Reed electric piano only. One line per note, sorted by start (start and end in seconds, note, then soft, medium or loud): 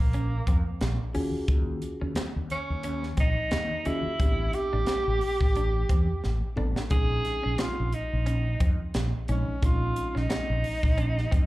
1.14 2.24 C#4 medium
1.14 2.24 F4 medium
1.14 2.24 F#4 medium
1.14 2.24 G#4 medium
3.86 4.12 C#4 medium
3.86 4.13 F4 medium
3.86 4.13 F#4 medium
3.86 4.13 G#4 medium
4.20 5.22 B3 medium
4.20 5.22 C4 medium
4.20 5.21 D4 medium
4.20 5.22 G4 medium
6.56 6.83 B3 medium
6.56 6.83 C4 medium
6.56 6.83 D4 medium
6.56 6.84 A4 medium
6.90 7.92 G#3 medium
6.90 7.93 C4 medium
6.90 7.92 C#4 medium
6.90 7.93 D#4 medium
9.28 9.55 G#3 medium
9.28 9.55 C4 soft
9.28 9.55 C#4 medium
9.28 9.55 D#4 medium
9.62 10.64 G#3 medium
9.62 10.64 C4 medium
9.62 10.64 C#4 medium
9.62 10.64 D#4 medium